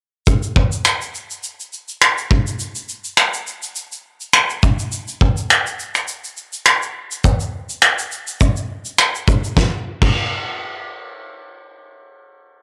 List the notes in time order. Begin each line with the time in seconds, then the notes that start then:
0.27 kick, shaker
0.43 shaker
0.56 kick
0.72 shaker
0.85 finger snap, shaker
1.01 shaker
1.15 shaker
1.30 shaker
1.43 shaker
1.60 shaker
1.73 shaker
1.88 shaker
2.02 finger snap, shaker
2.18 shaker
2.31 kick
2.47 shaker
2.59 shaker
2.75 shaker
2.89 shaker
3.04 shaker
3.17 finger snap, shaker
3.34 shaker
3.47 shaker
3.62 shaker
3.75 shaker
3.92 shaker
4.20 shaker
4.33 finger snap, shaker
4.50 shaker
4.63 kick, shaker
4.79 shaker
4.92 shaker
5.08 shaker
5.21 kick
5.37 shaker
5.50 finger snap, shaker
5.66 shaker
5.79 shaker
5.95 finger snap, shaker
6.08 shaker
6.24 shaker
6.37 shaker
6.53 shaker
6.66 finger snap, shaker
6.82 shaker
7.11 shaker
7.24 kick, shaker
7.40 shaker
7.69 shaker
7.82 finger snap, shaker
7.99 shaker
8.11 shaker
8.27 shaker
8.40 kick, shaker
8.56 shaker
8.85 shaker
8.98 finger snap, shaker
9.15 shaker
9.28 kick, shaker
9.44 shaker
9.57 kick, snare
10.02 kick, crash